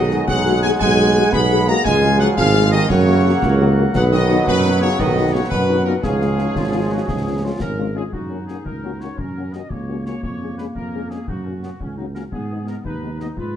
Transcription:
Already playing: tuba B1, euphonium D#3, trombone section F#3 G#3, woodwind section G#4 F#5, trumpet section D#5
0.11 french horn section G#3 F#4 G#4, snare
0.28 tuba B1, euphonium F#3, woodwind section G#4 F#5, trumpet section F#5, concert bass drum, snare
0.45 french horn section G#3 F#4 G#4
0.62 euphonium G#3, french horn section G#3 F#4 G#4, trumpet section G#5
0.80 tuba B1, euphonium G#3, woodwind section G#4 F#5, trumpet section G#5, concert bass drum, snare
0.98 french horn section G#3 F#4 G#4
1.16 french horn section G#3 F#4 G#4
1.32 tuba B1, euphonium B3, woodwind section G#4 F#5, trumpet section B5, concert bass drum, snare
1.50 french horn section G#3 F#4 G#4
1.67 french horn section G#3 F#4 G#4, euphonium A#3, trumpet section A#5
1.85 tuba C#2, trombone section F3 G#3, euphonium G#3, woodwind section G#4 F5, trumpet section G#5, concert bass drum, snare
2.02 french horn section G#3 F4 G#4, snare
2.19 euphonium F#3, french horn section G#3 F4 G#4, trumpet section F#5, snare
2.38 tuba G#1, euphonium F3, woodwind section G#4 F5, trumpet section F5, concert bass drum, snare
2.54 french horn section G#3 F4 G#4
2.71 euphonium D#3, french horn section G#3 F4 G#4, trumpet section D#5
2.89 tuba F#2, euphonium C#3, trombone section F#3 A#3, woodwind section A#4 F#5, trumpet section C#5, concert bass drum, snare
3.07 french horn section A#3 F#4
3.24 french horn section A#3 F#4
3.42 tuba C#2, concert bass drum, snare
3.60 french horn section A#3 F#4
3.76 french horn section A#3 F#4
3.94 tuba B1, euphonium F#3, trombone section F#3 B3, woodwind section B4 F#5, trumpet section F#5, concert bass drum, snare, crash
4.11 euphonium D#3, french horn section B3 D#4 F#4, trumpet section D#5, snare
4.28 french horn section B3 D#4 F#4, snare
4.47 tuba F#2, euphonium B2, woodwind section B4 F#5, trumpet section B4, concert bass drum, snare
4.63 french horn section B3 D#4 F#4
4.81 euphonium C#3, french horn section B3 D#4 F#4, trumpet section C#5
4.99 tuba B1, euphonium D#3, woodwind section B4 F#5, trumpet section D#5, concert bass drum, snare
5.15 french horn section B3 D#4 F#4
5.33 euphonium C#3, french horn section B3 D#4 F#4, trumpet section C#5
5.49 tuba F#2, euphonium B2, trumpet section B4, woodwind section B4 F#5, concert bass drum, snare
5.69 french horn section B3 D#4 F#4
5.85 euphonium A#2, french horn section B3 D#4 F#4, trumpet section A#4
6.02 tuba C#2, euphonium G#2, trombone section F3 C#4, trumpet section G#4, woodwind section G#4 F5, concert bass drum, snare
6.21 french horn section G#3 C#4 F4, snare
6.38 french horn section G#3 C#4 F4, snare
6.55 tuba G#1, woodwind section F4, concert bass drum, snare
6.72 french horn section G#3 C#4 F4
6.90 french horn section G#3 C#4 F4, woodwind section F#4
7.08 tuba C#2, woodwind section G#4, concert bass drum, snare
7.26 french horn section G#3 C#4 F4
7.43 french horn section G#3 C#4 F4, woodwind section F4
7.60 tuba G#1, woodwind section A#4, concert bass drum, snare
7.78 french horn section G#3 C#4 F4
7.94 french horn section G#3 C#4 F4, trumpet section G#4, woodwind section G#4
8.12 tuba F#2, woodwind section D#4, trumpet section F#4, concert bass drum
8.30 french horn section A#3 C#4 F#4
8.47 french horn section A#3 C#4 F#4, trumpet section G#4, snare
8.64 tuba C#2, trumpet section A#4, concert bass drum
8.83 french horn section A#3 C#4 F#4
9.00 french horn section A#3 C#4 F#4, trumpet section C#5, snare
9.18 tuba F#2, woodwind section C#4, trumpet section A#4, concert bass drum
9.36 french horn section A#3 C#4 F#4
9.53 french horn section A#3 C#4 F#4, trumpet section D#5, snare
9.69 tuba C#2, woodwind section A#3, trumpet section C#5, concert bass drum
9.88 french horn section A#3 C#4 F#4
10.05 french horn section A#3 C#4 F#4, trumpet section C#5, snare
10.23 tuba F2, trumpet section C#5, concert bass drum
10.41 french horn section G#3 C#4 G#4
10.58 french horn section G#3 C#4 G#4, trumpet section B4, snare
10.75 tuba F2, trumpet section A#4, concert bass drum
10.93 french horn section G#3 C#4 G#4
11.09 french horn section G#3 C#4 G#4, trumpet section G#4, snare
11.27 tuba F#2, woodwind section D#4, trumpet section F#4, concert bass drum
11.44 french horn section A#3 C#4 F#4, woodwind section C#4
11.62 french horn section A#3 C#4 F#4, woodwind section B3, snare
11.80 tuba C#2, woodwind section C#4, concert bass drum
11.97 french horn section A#3 C#4 F#4, woodwind section D#4
12.14 french horn section A#3 C#4 F#4, woodwind section C#4, trumpet section A#4, snare
12.32 tuba G#2, woodwind section B3, trumpet section G#4, concert bass drum
12.50 french horn section G#3 B3 D#4
12.66 french horn section G#3 B3 D#4, trumpet section A#4, snare
12.85 tuba D#2, woodwind section D#4, trumpet section B4, concert bass drum
13.02 french horn section G#3 B3 D#4
13.19 french horn section G#3 B3 D#4, trumpet section D#5, snare
13.37 tuba G#2, woodwind section F4, trumpet section B4, concert bass drum

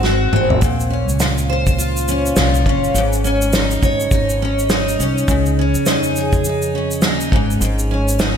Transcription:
Already playing: upright bass G#1, steel-string acoustic guitar G#2 C4, string section G#3 C4 F#4
0.03 steel-string acoustic guitar F#4, snare
0.33 upright bass G#1, steel-string acoustic guitar C4, mid tom
0.50 floor tom
0.61 upright bass A#1, steel-string acoustic guitar A#2, kick, shaker
0.80 shaker
0.90 steel-string acoustic guitar C#4
1.09 upright bass C#2, shaker
1.20 steel-string acoustic guitar F4, snare, shaker
1.38 shaker
1.50 steel-string acoustic guitar C5
1.67 kick, shaker
1.78 steel-string acoustic guitar F4, shaker
1.97 shaker
2.08 steel-string acoustic guitar C#4, shaker
2.26 shaker
2.36 upright bass C2, steel-string acoustic guitar F4, snare, shaker
2.55 shaker
2.66 upright bass F#1, steel-string acoustic guitar C#4, kick
2.84 shaker
2.94 upright bass G#1, steel-string acoustic guitar G#2, shaker
3.13 shaker
3.24 steel-string acoustic guitar C#4, shaker
3.41 shaker
3.53 steel-string acoustic guitar D#4, snare, shaker
3.71 shaker
3.82 upright bass G#1, steel-string acoustic guitar C#5, kick, shaker
4.00 shaker
4.11 upright bass G#1, steel-string acoustic guitar D#4, kick, shaker
4.29 shaker
4.42 steel-string acoustic guitar C#4
4.59 shaker
4.70 steel-string acoustic guitar D#4, snare, shaker
4.88 shaker
4.99 upright bass C2, steel-string acoustic guitar C#4, shaker
5.18 shaker
5.28 upright bass C#2, steel-string acoustic guitar C#3, kick, shaker
5.46 shaker
5.59 steel-string acoustic guitar C#4
5.74 upright bass F2, shaker
5.86 steel-string acoustic guitar D#4, snare, shaker
6.03 shaker
6.16 steel-string acoustic guitar G#4, shaker
6.33 kick, shaker
6.45 steel-string acoustic guitar D#4, shaker
6.62 shaker
6.75 steel-string acoustic guitar C#4
6.91 shaker
7.02 upright bass D#2, steel-string acoustic guitar D#4, snare, shaker
7.20 shaker
7.32 upright bass G#1, steel-string acoustic guitar G#2, kick
7.51 shaker
7.61 upright bass G#1, steel-string acoustic guitar G#2, shaker
7.79 shaker
7.91 steel-string acoustic guitar C#4
8.08 shaker
8.19 steel-string acoustic guitar D#4, snare, shaker

